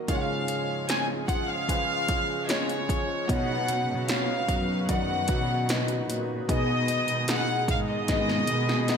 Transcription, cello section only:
3.29 3.85 B2 loud
3.89 4.26 B2 medium
4.49 5.25 F#2 medium
5.29 6.05 B2 medium
6.08 6.46 A#2 medium
6.49 7.05 B2 medium
7.08 7.46 B2 medium
7.68 8.44 G#2 medium
8.48 8.97 B2 loud

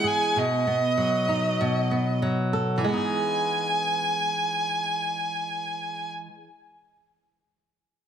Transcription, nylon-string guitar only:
0.00 0.43 E3 medium
0.00 0.43 G#3 medium
0.00 0.67 B3 medium
0.00 0.42 G#4 medium
0.36 1.59 B2 medium
0.67 1.91 B3 medium
0.97 2.21 F#3 medium
1.28 2.93 D#4 soft
1.61 2.91 B2 medium
1.91 2.88 B3 soft
2.22 2.84 F#3 medium
2.53 2.91 A4 soft
2.78 6.28 E3 medium
2.84 6.34 G#3 medium
2.89 6.39 B3 medium
2.94 6.44 D#4 medium
2.98 6.48 G#4 medium

